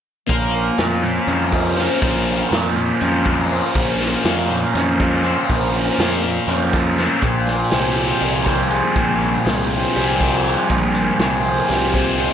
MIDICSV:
0, 0, Header, 1, 6, 480
1, 0, Start_track
1, 0, Tempo, 495458
1, 281, Time_signature, 7, 3, 24, 8
1, 11948, End_track
2, 0, Start_track
2, 0, Title_t, "Harmonium"
2, 0, Program_c, 0, 20
2, 279, Note_on_c, 0, 77, 61
2, 281, Note_on_c, 0, 61, 68
2, 283, Note_on_c, 0, 72, 56
2, 283, Note_on_c, 0, 82, 68
2, 6959, Note_off_c, 0, 77, 0
2, 6960, Note_off_c, 0, 61, 0
2, 6961, Note_off_c, 0, 82, 0
2, 6997, Note_on_c, 0, 65, 65
2, 7000, Note_on_c, 0, 80, 72
2, 7003, Note_on_c, 0, 79, 61
2, 11948, Note_off_c, 0, 65, 0
2, 11948, Note_off_c, 0, 72, 0
2, 11948, Note_off_c, 0, 79, 0
2, 11948, Note_off_c, 0, 80, 0
2, 11948, End_track
3, 0, Start_track
3, 0, Title_t, "Distorted electric guitar"
3, 0, Program_c, 1, 30
3, 265, Note_on_c, 1, 58, 66
3, 755, Note_on_c, 1, 65, 67
3, 996, Note_off_c, 1, 58, 0
3, 1000, Note_on_c, 1, 58, 58
3, 1240, Note_on_c, 1, 61, 67
3, 1476, Note_off_c, 1, 65, 0
3, 1479, Note_on_c, 1, 65, 61
3, 1713, Note_on_c, 1, 72, 67
3, 1938, Note_off_c, 1, 58, 0
3, 1942, Note_on_c, 1, 58, 60
3, 2434, Note_off_c, 1, 65, 0
3, 2438, Note_on_c, 1, 65, 69
3, 2680, Note_off_c, 1, 58, 0
3, 2684, Note_on_c, 1, 58, 67
3, 2928, Note_off_c, 1, 61, 0
3, 2932, Note_on_c, 1, 61, 67
3, 2961, Note_off_c, 1, 72, 0
3, 3156, Note_off_c, 1, 65, 0
3, 3159, Note_on_c, 1, 65, 62
3, 3408, Note_on_c, 1, 72, 67
3, 3639, Note_off_c, 1, 58, 0
3, 3643, Note_on_c, 1, 58, 67
3, 4121, Note_off_c, 1, 65, 0
3, 4124, Note_on_c, 1, 65, 64
3, 4347, Note_off_c, 1, 58, 0
3, 4358, Note_on_c, 1, 58, 65
3, 4599, Note_off_c, 1, 61, 0
3, 4602, Note_on_c, 1, 61, 71
3, 4632, Note_off_c, 1, 72, 0
3, 4844, Note_off_c, 1, 65, 0
3, 4848, Note_on_c, 1, 65, 61
3, 5081, Note_on_c, 1, 72, 72
3, 5325, Note_off_c, 1, 58, 0
3, 5337, Note_on_c, 1, 58, 60
3, 5800, Note_off_c, 1, 61, 0
3, 5800, Note_off_c, 1, 65, 0
3, 5804, Note_on_c, 1, 65, 65
3, 6033, Note_off_c, 1, 58, 0
3, 6045, Note_on_c, 1, 58, 60
3, 6278, Note_on_c, 1, 61, 68
3, 6307, Note_off_c, 1, 72, 0
3, 6520, Note_off_c, 1, 65, 0
3, 6524, Note_on_c, 1, 65, 61
3, 6769, Note_on_c, 1, 72, 61
3, 6998, Note_off_c, 1, 61, 0
3, 7001, Note_on_c, 1, 46, 68
3, 7002, Note_off_c, 1, 58, 0
3, 7030, Note_off_c, 1, 72, 0
3, 7469, Note_off_c, 1, 65, 0
3, 7473, Note_on_c, 1, 60, 69
3, 7710, Note_on_c, 1, 53, 55
3, 7958, Note_on_c, 1, 55, 70
3, 8193, Note_off_c, 1, 60, 0
3, 8197, Note_on_c, 1, 60, 62
3, 8200, Note_off_c, 1, 46, 0
3, 8434, Note_on_c, 1, 68, 62
3, 8675, Note_on_c, 1, 46, 62
3, 9152, Note_off_c, 1, 60, 0
3, 9156, Note_on_c, 1, 60, 66
3, 9405, Note_off_c, 1, 53, 0
3, 9409, Note_on_c, 1, 53, 64
3, 9438, Note_off_c, 1, 55, 0
3, 9646, Note_on_c, 1, 55, 68
3, 9675, Note_off_c, 1, 68, 0
3, 9876, Note_off_c, 1, 46, 0
3, 9892, Note_off_c, 1, 60, 0
3, 9896, Note_on_c, 1, 60, 62
3, 10133, Note_on_c, 1, 68, 68
3, 10370, Note_on_c, 1, 46, 64
3, 10850, Note_off_c, 1, 60, 0
3, 10853, Note_on_c, 1, 60, 73
3, 11098, Note_off_c, 1, 53, 0
3, 11102, Note_on_c, 1, 53, 67
3, 11131, Note_off_c, 1, 55, 0
3, 11325, Note_off_c, 1, 68, 0
3, 11330, Note_on_c, 1, 55, 67
3, 11563, Note_off_c, 1, 46, 0
3, 11569, Note_off_c, 1, 60, 0
3, 11573, Note_on_c, 1, 60, 60
3, 11807, Note_on_c, 1, 68, 71
3, 11948, Note_off_c, 1, 53, 0
3, 11948, Note_off_c, 1, 55, 0
3, 11948, Note_off_c, 1, 60, 0
3, 11948, Note_off_c, 1, 68, 0
3, 11948, End_track
4, 0, Start_track
4, 0, Title_t, "Tanpura"
4, 0, Program_c, 2, 104
4, 282, Note_on_c, 2, 53, 57
4, 872, Note_on_c, 2, 58, 47
4, 1464, Note_off_c, 2, 58, 0
4, 1464, Note_on_c, 2, 58, 64
4, 2074, Note_on_c, 2, 46, 58
4, 2677, Note_off_c, 2, 53, 0
4, 2681, Note_on_c, 2, 53, 46
4, 3296, Note_off_c, 2, 58, 0
4, 3296, Note_on_c, 2, 58, 58
4, 3910, Note_off_c, 2, 58, 0
4, 3910, Note_on_c, 2, 58, 54
4, 4514, Note_off_c, 2, 46, 0
4, 4518, Note_on_c, 2, 46, 52
4, 5115, Note_off_c, 2, 53, 0
4, 5119, Note_on_c, 2, 53, 48
4, 5730, Note_off_c, 2, 58, 0
4, 5730, Note_on_c, 2, 58, 62
4, 6339, Note_off_c, 2, 58, 0
4, 6339, Note_on_c, 2, 58, 60
4, 6952, Note_off_c, 2, 46, 0
4, 6956, Note_on_c, 2, 46, 57
4, 7525, Note_off_c, 2, 53, 0
4, 7529, Note_on_c, 2, 53, 56
4, 8155, Note_off_c, 2, 58, 0
4, 8155, Note_on_c, 2, 58, 53
4, 8754, Note_off_c, 2, 58, 0
4, 8754, Note_on_c, 2, 58, 57
4, 9356, Note_off_c, 2, 46, 0
4, 9360, Note_on_c, 2, 46, 57
4, 9945, Note_off_c, 2, 53, 0
4, 9949, Note_on_c, 2, 53, 57
4, 10571, Note_off_c, 2, 58, 0
4, 10571, Note_on_c, 2, 58, 54
4, 11153, Note_off_c, 2, 58, 0
4, 11153, Note_on_c, 2, 58, 51
4, 11750, Note_off_c, 2, 46, 0
4, 11754, Note_on_c, 2, 46, 59
4, 11948, Note_off_c, 2, 46, 0
4, 11948, Note_off_c, 2, 53, 0
4, 11948, Note_off_c, 2, 58, 0
4, 11948, End_track
5, 0, Start_track
5, 0, Title_t, "Picked electric bass"
5, 0, Program_c, 3, 34
5, 289, Note_on_c, 3, 34, 92
5, 667, Note_off_c, 3, 34, 0
5, 760, Note_on_c, 3, 41, 88
5, 1141, Note_off_c, 3, 41, 0
5, 1233, Note_on_c, 3, 41, 88
5, 1808, Note_off_c, 3, 41, 0
5, 1961, Note_on_c, 3, 34, 88
5, 2342, Note_off_c, 3, 34, 0
5, 2433, Note_on_c, 3, 41, 80
5, 2817, Note_off_c, 3, 41, 0
5, 2921, Note_on_c, 3, 41, 86
5, 3493, Note_off_c, 3, 41, 0
5, 3633, Note_on_c, 3, 34, 101
5, 4017, Note_off_c, 3, 34, 0
5, 4111, Note_on_c, 3, 41, 80
5, 4496, Note_off_c, 3, 41, 0
5, 4597, Note_on_c, 3, 41, 77
5, 5170, Note_off_c, 3, 41, 0
5, 5325, Note_on_c, 3, 34, 92
5, 5704, Note_off_c, 3, 34, 0
5, 5798, Note_on_c, 3, 41, 89
5, 6180, Note_off_c, 3, 41, 0
5, 6268, Note_on_c, 3, 41, 82
5, 6845, Note_off_c, 3, 41, 0
5, 6998, Note_on_c, 3, 34, 98
5, 7380, Note_off_c, 3, 34, 0
5, 7478, Note_on_c, 3, 36, 76
5, 7860, Note_off_c, 3, 36, 0
5, 7955, Note_on_c, 3, 36, 87
5, 8529, Note_off_c, 3, 36, 0
5, 8677, Note_on_c, 3, 34, 92
5, 9059, Note_off_c, 3, 34, 0
5, 9165, Note_on_c, 3, 36, 90
5, 9544, Note_off_c, 3, 36, 0
5, 9648, Note_on_c, 3, 36, 81
5, 10216, Note_off_c, 3, 36, 0
5, 10371, Note_on_c, 3, 34, 93
5, 10747, Note_off_c, 3, 34, 0
5, 10842, Note_on_c, 3, 36, 82
5, 11222, Note_off_c, 3, 36, 0
5, 11329, Note_on_c, 3, 36, 86
5, 11896, Note_off_c, 3, 36, 0
5, 11948, End_track
6, 0, Start_track
6, 0, Title_t, "Drums"
6, 283, Note_on_c, 9, 36, 101
6, 284, Note_on_c, 9, 42, 70
6, 380, Note_off_c, 9, 36, 0
6, 381, Note_off_c, 9, 42, 0
6, 530, Note_on_c, 9, 42, 59
6, 627, Note_off_c, 9, 42, 0
6, 758, Note_on_c, 9, 42, 69
6, 764, Note_on_c, 9, 38, 88
6, 855, Note_off_c, 9, 42, 0
6, 861, Note_off_c, 9, 38, 0
6, 1004, Note_on_c, 9, 42, 52
6, 1101, Note_off_c, 9, 42, 0
6, 1235, Note_on_c, 9, 42, 70
6, 1331, Note_off_c, 9, 42, 0
6, 1476, Note_on_c, 9, 36, 66
6, 1477, Note_on_c, 9, 42, 64
6, 1573, Note_off_c, 9, 36, 0
6, 1574, Note_off_c, 9, 42, 0
6, 1716, Note_on_c, 9, 42, 54
6, 1722, Note_on_c, 9, 38, 33
6, 1813, Note_off_c, 9, 42, 0
6, 1819, Note_off_c, 9, 38, 0
6, 1958, Note_on_c, 9, 36, 87
6, 1962, Note_on_c, 9, 42, 70
6, 2055, Note_off_c, 9, 36, 0
6, 2059, Note_off_c, 9, 42, 0
6, 2197, Note_on_c, 9, 42, 53
6, 2294, Note_off_c, 9, 42, 0
6, 2443, Note_on_c, 9, 42, 62
6, 2448, Note_on_c, 9, 38, 87
6, 2539, Note_off_c, 9, 42, 0
6, 2545, Note_off_c, 9, 38, 0
6, 2679, Note_on_c, 9, 42, 55
6, 2776, Note_off_c, 9, 42, 0
6, 2913, Note_on_c, 9, 42, 63
6, 3010, Note_off_c, 9, 42, 0
6, 3152, Note_on_c, 9, 42, 53
6, 3156, Note_on_c, 9, 36, 68
6, 3249, Note_off_c, 9, 42, 0
6, 3253, Note_off_c, 9, 36, 0
6, 3395, Note_on_c, 9, 42, 51
6, 3492, Note_off_c, 9, 42, 0
6, 3633, Note_on_c, 9, 42, 74
6, 3637, Note_on_c, 9, 36, 95
6, 3730, Note_off_c, 9, 42, 0
6, 3734, Note_off_c, 9, 36, 0
6, 3876, Note_on_c, 9, 42, 53
6, 3881, Note_on_c, 9, 38, 31
6, 3973, Note_off_c, 9, 42, 0
6, 3978, Note_off_c, 9, 38, 0
6, 4114, Note_on_c, 9, 42, 66
6, 4120, Note_on_c, 9, 38, 94
6, 4211, Note_off_c, 9, 42, 0
6, 4217, Note_off_c, 9, 38, 0
6, 4361, Note_on_c, 9, 42, 51
6, 4458, Note_off_c, 9, 42, 0
6, 4602, Note_on_c, 9, 42, 73
6, 4608, Note_on_c, 9, 38, 30
6, 4699, Note_off_c, 9, 42, 0
6, 4705, Note_off_c, 9, 38, 0
6, 4843, Note_on_c, 9, 36, 72
6, 4844, Note_on_c, 9, 42, 53
6, 4939, Note_off_c, 9, 36, 0
6, 4940, Note_off_c, 9, 42, 0
6, 5074, Note_on_c, 9, 42, 61
6, 5171, Note_off_c, 9, 42, 0
6, 5324, Note_on_c, 9, 36, 86
6, 5326, Note_on_c, 9, 42, 73
6, 5421, Note_off_c, 9, 36, 0
6, 5422, Note_off_c, 9, 42, 0
6, 5569, Note_on_c, 9, 42, 53
6, 5666, Note_off_c, 9, 42, 0
6, 5807, Note_on_c, 9, 42, 68
6, 5812, Note_on_c, 9, 38, 88
6, 5903, Note_off_c, 9, 42, 0
6, 5909, Note_off_c, 9, 38, 0
6, 6041, Note_on_c, 9, 42, 55
6, 6138, Note_off_c, 9, 42, 0
6, 6289, Note_on_c, 9, 42, 70
6, 6386, Note_off_c, 9, 42, 0
6, 6523, Note_on_c, 9, 36, 74
6, 6523, Note_on_c, 9, 42, 64
6, 6529, Note_on_c, 9, 38, 31
6, 6620, Note_off_c, 9, 36, 0
6, 6620, Note_off_c, 9, 42, 0
6, 6626, Note_off_c, 9, 38, 0
6, 6764, Note_on_c, 9, 42, 56
6, 6769, Note_on_c, 9, 38, 34
6, 6861, Note_off_c, 9, 42, 0
6, 6866, Note_off_c, 9, 38, 0
6, 6993, Note_on_c, 9, 42, 70
6, 6999, Note_on_c, 9, 36, 87
6, 7090, Note_off_c, 9, 42, 0
6, 7096, Note_off_c, 9, 36, 0
6, 7232, Note_on_c, 9, 42, 49
6, 7238, Note_on_c, 9, 38, 31
6, 7329, Note_off_c, 9, 42, 0
6, 7335, Note_off_c, 9, 38, 0
6, 7470, Note_on_c, 9, 42, 55
6, 7476, Note_on_c, 9, 38, 84
6, 7567, Note_off_c, 9, 42, 0
6, 7573, Note_off_c, 9, 38, 0
6, 7713, Note_on_c, 9, 42, 55
6, 7810, Note_off_c, 9, 42, 0
6, 7953, Note_on_c, 9, 42, 63
6, 8050, Note_off_c, 9, 42, 0
6, 8197, Note_on_c, 9, 42, 55
6, 8199, Note_on_c, 9, 36, 68
6, 8203, Note_on_c, 9, 38, 29
6, 8294, Note_off_c, 9, 42, 0
6, 8296, Note_off_c, 9, 36, 0
6, 8300, Note_off_c, 9, 38, 0
6, 8435, Note_on_c, 9, 42, 58
6, 8532, Note_off_c, 9, 42, 0
6, 8676, Note_on_c, 9, 42, 67
6, 8679, Note_on_c, 9, 36, 92
6, 8772, Note_off_c, 9, 42, 0
6, 8776, Note_off_c, 9, 36, 0
6, 8927, Note_on_c, 9, 42, 53
6, 9024, Note_off_c, 9, 42, 0
6, 9166, Note_on_c, 9, 42, 62
6, 9172, Note_on_c, 9, 38, 76
6, 9263, Note_off_c, 9, 42, 0
6, 9269, Note_off_c, 9, 38, 0
6, 9407, Note_on_c, 9, 42, 63
6, 9503, Note_off_c, 9, 42, 0
6, 9647, Note_on_c, 9, 42, 67
6, 9744, Note_off_c, 9, 42, 0
6, 9883, Note_on_c, 9, 36, 71
6, 9885, Note_on_c, 9, 42, 55
6, 9980, Note_off_c, 9, 36, 0
6, 9982, Note_off_c, 9, 42, 0
6, 10125, Note_on_c, 9, 42, 61
6, 10222, Note_off_c, 9, 42, 0
6, 10365, Note_on_c, 9, 42, 78
6, 10366, Note_on_c, 9, 36, 88
6, 10462, Note_off_c, 9, 42, 0
6, 10463, Note_off_c, 9, 36, 0
6, 10605, Note_on_c, 9, 42, 62
6, 10702, Note_off_c, 9, 42, 0
6, 10843, Note_on_c, 9, 42, 68
6, 10848, Note_on_c, 9, 38, 88
6, 10939, Note_off_c, 9, 42, 0
6, 10945, Note_off_c, 9, 38, 0
6, 11087, Note_on_c, 9, 42, 54
6, 11184, Note_off_c, 9, 42, 0
6, 11331, Note_on_c, 9, 42, 66
6, 11337, Note_on_c, 9, 38, 30
6, 11428, Note_off_c, 9, 42, 0
6, 11434, Note_off_c, 9, 38, 0
6, 11565, Note_on_c, 9, 36, 68
6, 11567, Note_on_c, 9, 42, 56
6, 11662, Note_off_c, 9, 36, 0
6, 11664, Note_off_c, 9, 42, 0
6, 11805, Note_on_c, 9, 42, 51
6, 11901, Note_off_c, 9, 42, 0
6, 11948, End_track
0, 0, End_of_file